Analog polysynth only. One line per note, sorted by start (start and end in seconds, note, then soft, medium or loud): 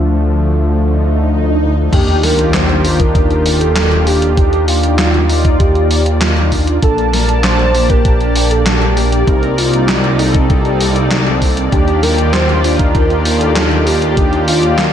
0.00 1.89 D4 medium
0.00 1.89 F4 medium
0.00 1.89 A4 medium
1.93 2.81 D4 medium
1.93 2.81 D#4 medium
1.93 2.81 G4 medium
2.84 3.73 D4 medium
2.84 3.73 D#4 medium
2.84 3.73 F4 loud
3.76 4.34 D4 medium
3.76 4.34 D#4 medium
3.76 4.34 F4 medium
4.38 5.26 D4 medium
4.38 5.26 D#4 medium
4.38 5.26 G4 loud
5.29 6.18 D#4 medium
5.29 6.18 F4 loud
5.29 6.18 D5 medium
6.21 6.79 D4 medium
6.21 6.79 D#4 medium
6.21 6.79 F4 loud
6.83 7.71 A#3 medium
6.83 7.71 D4 medium
6.83 7.71 A5 medium
7.74 8.63 A#3 loud
7.74 8.63 D4 medium
7.74 8.63 G4 loud
8.66 9.24 A#3 medium
8.66 9.24 D4 medium
8.66 9.24 G4 medium
9.28 10.16 C4 medium
9.28 10.16 D#4 medium
9.28 10.16 A#4 loud
10.19 11.07 C4 medium
10.19 11.07 D#4 medium
10.19 11.07 A4 loud
11.11 11.69 C4 medium
11.11 11.69 D#4 medium
11.11 11.69 A4 medium
11.72 12.61 D4 medium
11.72 12.61 D#4 medium
11.72 12.61 G4 loud
12.64 13.52 D4 medium
12.64 13.52 D#4 medium
12.64 13.52 F4 loud
13.56 14.14 D4 medium
13.56 14.14 D#4 medium
13.56 14.14 F4 medium
14.17 14.93 D4 medium
14.17 14.93 D#4 medium
14.17 14.93 G4 loud